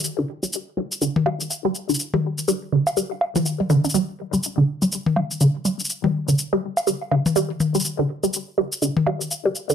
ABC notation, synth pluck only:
X:1
M:4/4
L:1/16
Q:"Swing 16ths" 1/4=123
K:Cmix
V:1 name="Synth pluck" clef=bass
z D, z G, z2 G, z D, z G, z2 G, z D, | z G, z2 G, z D, z G, z2 F, z G, D, D | G, z2 G, z D, z G, z2 G, z D, z G, z | z G, z D, z G, z2 G, z D, z G, z2 G, |
z D, z G, z2 G, z D, z G, z2 G, z D, |]